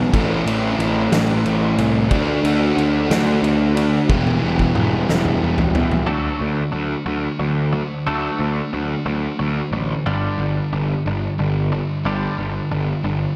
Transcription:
Already playing: E2 B2 E3 G3 B3 E4
0.12 A1 A2 E3 A3 C4 E4, kick, ride
0.46 A1 A2 E3 A3, ride
0.78 A1 A2 E3 A3, ride
1.12 A1 A2 E3 A3, snare, ride
1.46 A1 A2 E3 A3, ride
1.76 C2 A2 E3 A3, ride
2.09 D2 D3 A3 D4, kick, ride
2.13 A3 D4 F#4
2.42 D2 D3 A3 D4, ride
2.76 D2 D3 A3 D4, ride
3.09 D2 D3 A3 D4, snare, ride
3.41 D2 D3 A3 D4, ride
3.75 D3 A3 D4, ride
4.08 E1 E2 B2 E3, kick, high tom
4.12 G3 B3 E4
4.27 high tom
4.42 E1 E2 B2 E3
4.59 kick
4.74 E1 E2 B2 E3, mid tom
5.08 E1 E2 B2 E3, snare
5.25 mid tom
5.41 E1 E2 B2 E3
5.58 floor tom
5.75 E2 B2 E3, floor tom
5.91 floor tom
6.07 D2 D3 F#3 A3 D4
6.40 D2 D3 F#3 A3
6.72 D2 D3 F#3 A3
7.06 D2 D3 F#3 A3
7.40 D2 D3 F#3 A3
7.73 D3 F#3 A3
8.07 D2 D3 F#3 A3 D4
8.39 D2 D3 F#3 A3
8.73 D2 D3 F#3 A3
9.06 D2 D3 F#3 A3
9.39 D2 D3 F#3 A3
9.72 A1 D3 F#3 A3
10.06 G1 G2 D3 G3
10.38 G1 G2 D3
10.72 G1 G2 D3
11.06 G1 G2 D3
11.38 G1 G2 D3
11.72 G2 D3
12.04 G1 G2 D3 G3
12.38 G1 G2 D3
12.72 G1 G2 D3
13.04 G1 G2 D3

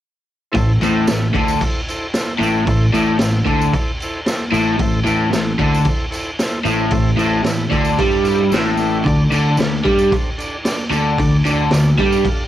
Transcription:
0.52 A1 A2 E4 A4 C5, kick, crash
0.57 tambourine
0.80 A1 A2 E4 C5, tambourine, crash
0.84 A4
1.07 A1 A2 E4 A4 B4, snare, tambourine, crash
1.34 D2 D3 E4 A4 C5, kick, crash
1.48 tambourine
1.61 E4 A4 C5, kick, crash
1.88 E4 A4 C5, tambourine, crash
2.14 E4 A4 C5, snare, tambourine, crash
2.39 A1 A2 A4 B4, crash
2.43 E4, tambourine
2.66 A1 A2 E4 A4 C5, kick, crash
2.70 tambourine
2.92 A1 A2 E4 A4 D5, tambourine, crash
3.19 A1 A2 E4 A4 C5, snare, tambourine, crash
3.46 D2 D3 E4, kick, crash
3.50 A4 C5
3.62 tambourine
3.71 E4 A4 C5, kick, crash
3.76 tambourine
4.00 E4 C5, tambourine, crash
4.04 A4
4.25 E4 A4 C5, snare, tambourine, crash
4.52 A1 A2 E4 A4 C5, tambourine, crash
4.78 A1 A2 C5, kick, crash
4.82 E4 A4, tambourine
5.04 A1 A2 E4 A4 B4, tambourine, crash
5.31 A1 A2 E4 A4, snare, tambourine, crash
5.36 C5
5.59 D2 D3 E4 A4 C5, kick, crash
5.74 tambourine
5.84 E4 C5, kick, crash
5.89 A4, tambourine
6.10 E4 A4 C5, tambourine, crash
6.39 E4 A4 C5, snare, tambourine, crash
6.64 A1 A2 E4 A4 C5, tambourine, crash
6.90 A1 A2 E4 A4 C5, kick, tambourine, crash
7.17 A1 A2 E4 A4 C5, tambourine, crash
7.43 A1 A2 E4 A4 B4, snare, tambourine, crash
7.70 D2 D3 E4 A4 D5 C6, kick, tambourine, crash
7.85 tambourine
7.98 G2 G3 E4 A4 C5 A5, kick, crash
8.12 tambourine
8.23 E4 A4 C5 F5, tambourine, crash
8.38 tambourine
8.50 A1 A2 E4 A4 C5 E5, tambourine
8.54 snare, crash
8.65 tambourine
8.77 E4 A4 B4 D5, tambourine, crash
9.04 D2 D3 D4 A4 D5, kick, tambourine, crash
9.29 D2 D3 D4 A4 D5, tambourine
9.34 crash
9.57 D2 D3 D4 A4 B4, snare, tambourine, crash
9.83 G2 G3 D4 A4 F5, kick, crash
9.99 tambourine
10.10 D4 A4 C5, kick, tambourine, crash
10.38 D4 A4 D5, tambourine, crash
10.64 D4 A4 D5, snare, tambourine, crash
10.90 D2 D3 D4 A4 D5, tambourine, crash
11.18 D2 D3 D4 A4 D5, kick, tambourine, crash
11.45 D2 D3 D4 A4 D5, tambourine, crash
11.70 D2 D3 D4 A4 D5, snare, tambourine, crash
11.98 G2 G3 D4 A4 F5, kick, crash
12.12 tambourine
12.24 D4 A4 F5, kick, tambourine, crash

